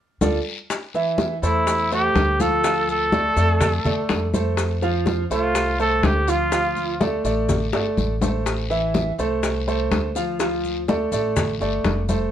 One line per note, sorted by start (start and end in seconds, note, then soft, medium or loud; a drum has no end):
0.21 0.39 D2 medium
0.21 0.37 F4 medium
0.21 0.37 A4 medium
0.21 0.37 D5 medium
0.21 low bongo loud
0.21 high conga loud
0.21 long guiro loud
0.21 maracas loud
0.70 high bongo medium
0.70 high conga soft
0.70 maracas medium
0.94 1.34 E3 medium
0.94 1.34 E4 medium
0.94 1.35 E5 medium
0.94 high conga soft
0.94 maracas soft
1.18 high bongo medium
1.18 high conga medium
1.18 short guiro medium
1.18 maracas soft
1.42 2.11 E2 medium
1.42 1.83 A3 medium
1.42 1.88 E4 loud
1.42 1.83 A4 medium
1.42 1.83 C5 medium
1.42 short guiro medium
1.42 maracas medium
1.67 high bongo medium
1.67 high conga soft
1.67 long guiro medium
1.67 maracas loud
1.91 2.31 A3 medium
1.91 2.43 G4 loud
1.91 2.31 A4 medium
1.91 2.32 C5 medium
1.91 high conga soft
1.91 maracas soft
2.15 3.30 D2 medium
2.15 high bongo medium
2.15 low bongo medium
2.15 high conga medium
2.15 short guiro medium
2.15 maracas soft
2.40 2.60 F3 medium
2.40 2.60 F4 medium
2.40 2.89 A4 loud
2.40 2.60 F5 medium
2.40 high conga medium
2.40 short guiro medium
2.40 maracas medium
2.64 3.04 F3 medium
2.64 3.04 F4 medium
2.64 3.04 F5 medium
2.64 high bongo medium
2.64 high conga soft
2.64 long guiro medium
2.64 maracas medium
2.89 4.31 A4 loud
2.89 high conga soft
2.89 maracas soft
3.12 3.32 A3 medium
3.12 3.33 A4 medium
3.12 3.33 D5 medium
3.12 high bongo medium
3.12 high conga loud
3.12 short guiro medium
3.12 maracas soft
3.37 3.82 F2 loud
3.37 3.77 A3 medium
3.37 3.77 A4 medium
3.37 3.77 D5 medium
3.37 high bongo soft
3.37 high conga soft
3.37 short guiro medium
3.37 maracas medium
3.61 high bongo medium
3.61 high conga soft
3.61 low conga medium
3.61 long guiro medium
3.61 maracas medium
3.85 4.08 E2 medium
3.85 4.25 A3 medium
3.85 4.25 A4 medium
3.85 4.26 D5 medium
3.85 high bongo soft
3.85 high conga soft
3.85 low conga medium
3.85 maracas soft
4.09 5.24 F2 loud
4.09 high bongo medium
4.09 low bongo medium
4.09 high conga medium
4.09 short guiro medium
4.09 maracas soft
4.34 4.74 A3 medium
4.34 4.74 A4 medium
4.34 4.74 C5 medium
4.34 high bongo soft
4.34 high conga medium
4.34 short guiro medium
4.34 maracas medium
4.57 high bongo medium
4.57 high conga soft
4.57 long guiro medium
4.57 maracas medium
4.82 5.22 F3 medium
4.82 5.22 F4 medium
4.82 5.23 F5 medium
4.82 high conga soft
4.82 maracas soft
5.06 high bongo medium
5.06 high conga loud
5.06 short guiro medium
5.06 maracas soft
5.30 5.99 C2 medium
5.30 5.71 A3 medium
5.30 5.77 F4 medium
5.30 5.71 A4 medium
5.30 5.71 C5 medium
5.30 short guiro medium
5.30 maracas medium
5.55 high bongo medium
5.55 high conga soft
5.55 long guiro medium
5.55 maracas medium
5.79 6.19 A3 medium
5.79 6.19 A4 medium
5.79 6.07 A4 loud
5.79 6.20 C5 medium
5.79 high conga soft
5.79 maracas soft
6.03 7.18 D2 medium
6.03 6.31 G4 loud
6.03 high bongo medium
6.03 low bongo medium
6.03 high conga medium
6.03 short guiro medium
6.03 maracas soft
6.28 6.48 F3 medium
6.28 6.48 F4 medium
6.28 7.01 F4 loud
6.28 6.48 F5 medium
6.28 short guiro medium
6.28 maracas medium
6.52 6.92 F3 medium
6.52 6.92 F4 medium
6.52 6.92 F5 medium
6.52 high bongo medium
6.52 high conga soft
6.52 long guiro medium
6.52 maracas medium
6.76 high conga soft
6.76 maracas soft
7.00 7.20 A3 medium
7.00 7.20 A4 medium
7.00 7.21 D5 medium
7.00 high bongo medium
7.00 high conga loud
7.00 short guiro medium
7.00 maracas soft
7.24 7.70 A1 medium
7.24 7.65 A3 medium
7.24 7.65 A4 medium
7.24 7.65 D5 medium
7.24 high bongo soft
7.24 high conga soft
7.24 short guiro medium
7.24 maracas medium
7.49 high bongo medium
7.49 high conga soft
7.49 low conga medium
7.49 long guiro medium
7.49 maracas medium
7.73 7.96 G1 medium
7.73 8.13 A3 medium
7.73 8.13 A4 medium
7.73 8.13 D5 medium
7.73 high bongo loud
7.73 high conga soft
7.73 maracas soft
7.97 9.12 A1 medium
7.97 high conga medium
7.97 short guiro medium
7.97 maracas soft
8.21 8.62 A3 medium
8.21 8.62 A4 medium
8.21 8.62 C5 medium
8.21 low bongo medium
8.21 high conga medium
8.21 short guiro medium
8.21 maracas medium
8.46 high bongo medium
8.46 high conga soft
8.46 long guiro medium
8.46 maracas medium
8.70 9.10 E3 medium
8.70 9.10 E4 loud
8.70 9.10 E5 medium
8.70 high conga soft
8.70 maracas soft
8.94 high bongo medium
8.94 high conga medium
8.94 short guiro medium
8.94 maracas soft
9.18 9.87 C2 medium
9.18 9.58 A3 medium
9.18 9.59 A4 medium
9.18 9.59 C5 medium
9.18 short guiro medium
9.18 maracas medium
9.43 high bongo medium
9.43 high conga soft
9.43 long guiro medium
9.43 maracas medium
9.67 10.07 A3 medium
9.67 10.07 A4 medium
9.67 10.07 C5 medium
9.67 high conga soft
9.67 maracas soft
9.91 11.06 D2 medium
9.91 high bongo medium
9.91 low bongo medium
9.91 high conga medium
9.91 short guiro medium
9.91 maracas soft
10.15 10.36 F3 medium
10.15 10.36 F4 medium
10.15 10.36 F5 medium
10.15 short guiro medium
10.15 maracas medium
10.40 10.79 F3 medium
10.40 10.80 F4 medium
10.40 10.80 F5 medium
10.40 high bongo medium
10.40 high conga soft
10.40 long guiro medium
10.40 maracas medium
10.64 high conga soft
10.64 maracas soft
10.88 11.08 A3 medium
10.88 11.08 A4 medium
10.88 11.08 D5 medium
10.88 high bongo medium
10.88 high conga loud
10.88 short guiro medium
10.88 maracas soft
11.12 11.57 A1 medium
11.12 11.52 A3 medium
11.12 11.52 A4 medium
11.12 11.52 D5 medium
11.12 high bongo soft
11.12 high conga soft
11.12 short guiro medium
11.12 maracas medium
11.36 high bongo medium
11.36 high conga soft
11.36 low conga medium
11.36 long guiro medium
11.36 maracas loud
11.60 11.83 G1 medium
11.60 12.00 A3 medium
11.60 12.01 A4 medium
11.60 12.01 D5 medium
11.60 high bongo soft
11.60 high conga soft
11.60 maracas soft
11.84 12.31 F1 medium
11.84 high bongo medium
11.84 low bongo medium
11.84 high conga medium
11.84 short guiro medium
11.84 maracas soft
12.09 12.31 A3 medium
12.09 12.31 A4 medium
12.09 12.31 C5 medium
12.09 high bongo soft
12.09 high conga medium
12.09 short guiro medium
12.09 maracas medium